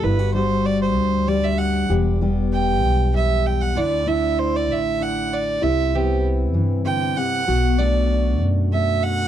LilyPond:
<<
  \new Staff \with { instrumentName = "Fiddle" } { \time 6/8 \key g \major \tempo 4. = 64 b'8 c''8 d''16 c''8. d''16 e''16 fis''8 | r4 g''4 e''8 g''16 fis''16 | d''8 e''8 c''16 d''16 e''8 fis''8 d''8 | e''8 g'8 r4 g''8 fis''8~ |
fis''8 d''4 r8 e''8 fis''8 | }
  \new Staff \with { instrumentName = "Steel-string acoustic guitar" } { \time 6/8 \key g \major << { <g e'>16 fis'16 <g d' fis'>4. g4 | g'8 <g b g'>4. g4 | <a d' e'>8 <d' e'>4. d'4 | e'8 <b c' e'>2~ <b c' e'>8 |
fis'8 <a d' fis'>4. a4 | } \\ { g,2. | e,2. | d2. | c4. e8 d8 c8 |
b,2. | } >> }
  \new Staff \with { instrumentName = "Upright bass" } { \clef bass \time 6/8 \key g \major g,,4. d,4. | e,,4. b,,4. | d,4. a,,4. | c,4. g,4. |
b,,4. fis,4. | }
>>